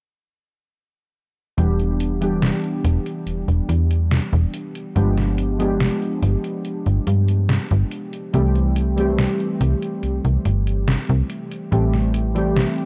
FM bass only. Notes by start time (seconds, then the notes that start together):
1.58 E1
2.85 E1
3.27 E1
3.48 E1
3.69 E2
4.33 E1
4.96 G1
6.23 G1
6.86 G1
7.07 G2
7.71 G1
8.34 C2
9.61 C2
10.03 C2
10.25 C2
10.45 G1
11.09 C2
11.72 A1